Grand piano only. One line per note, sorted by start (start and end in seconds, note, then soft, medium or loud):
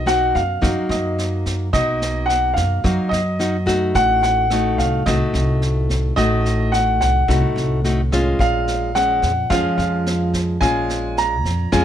0.07 0.35 F#5 loud
0.35 0.86 F5 medium
0.90 1.42 D#5 medium
1.73 2.30 D#5 medium
2.26 2.53 F#5 medium
2.54 3.12 F5 medium
3.09 3.62 D#5 medium
3.95 4.21 F#5 loud
4.23 4.80 F#5 medium
4.78 5.07 F5 medium
5.06 5.58 D#5 medium
6.16 6.74 D#5 loud
6.72 6.99 F#5 medium
7.01 7.80 F#5 medium
8.40 8.97 F5 loud
8.95 9.52 F#5 loud
9.50 9.76 F5 loud
9.78 10.29 F5 medium
10.61 11.18 G#5 loud
11.18 11.74 A#5 medium
11.73 11.85 G#5 loud